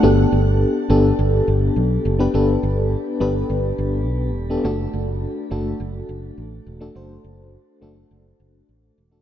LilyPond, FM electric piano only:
\new Staff \with { instrumentName = "FM electric piano" } { \time 4/4 \key g \major \tempo 4 = 104 <b d' g' a'>4 r8 <b d' g' a'>4. r8. <b d' g' b'>16 | <b d' g' a'>4 r8 <b d' g' b'>4. r8. <b d' g' a'>16 | <a d' fis' a'>4 r8 <a d' fis' a'>4. r8. <a d' fis' a'>16 | <a d' fis' c''>4 r8 <a d' fis' a'>4. r8. <a d' fis' a'>16 | }